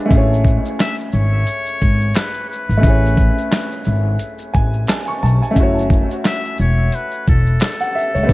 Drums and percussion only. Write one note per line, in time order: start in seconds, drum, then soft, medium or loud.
0.11 kick loud
0.11 closed hi-hat medium
0.11 shaker medium
0.34 shaker medium
0.45 kick medium
0.45 shaker soft
0.65 shaker medium
0.80 snare loud
0.80 clap medium
0.80 closed hi-hat medium
0.80 shaker medium
0.99 shaker soft
1.12 shaker medium
1.47 closed hi-hat medium
1.47 shaker medium
1.66 shaker soft
1.81 kick medium
1.81 shaker medium
2.01 shaker soft
2.14 snare loud
2.14 clap loud
2.14 closed hi-hat medium
2.14 shaker medium
2.34 shaker soft
2.53 shaker medium
2.70 shaker soft
2.83 kick loud
2.83 closed hi-hat medium
2.83 shaker medium
3.06 shaker soft
3.17 kick medium
3.17 shaker soft
3.38 shaker soft
3.52 snare loud
3.52 clap medium
3.52 closed hi-hat medium
3.52 shaker medium
3.71 shaker soft
3.85 shaker medium
4.19 closed hi-hat medium
4.19 shaker medium
4.39 shaker soft
4.54 kick medium
4.54 shaker medium
4.74 shaker soft
4.87 snare loud
4.87 clap loud
4.87 closed hi-hat medium
4.87 shaker medium
5.07 shaker soft
5.26 shaker soft
5.43 shaker soft
5.56 kick loud
5.56 closed hi-hat medium
5.56 shaker medium
5.79 shaker soft
5.90 kick loud
5.90 shaker soft
6.11 shaker medium
6.25 snare loud
6.25 clap medium
6.25 closed hi-hat medium
6.25 shaker medium
6.45 shaker soft
6.58 shaker medium
6.92 closed hi-hat medium
6.92 shaker medium
7.11 shaker soft
7.27 kick medium
7.27 shaker soft
7.46 shaker soft
7.60 snare loud
7.60 clap loud
7.60 closed hi-hat medium
7.60 shaker medium
7.80 shaker soft
7.99 shaker soft
8.16 shaker soft
8.29 kick loud
8.29 closed hi-hat medium
8.29 shaker medium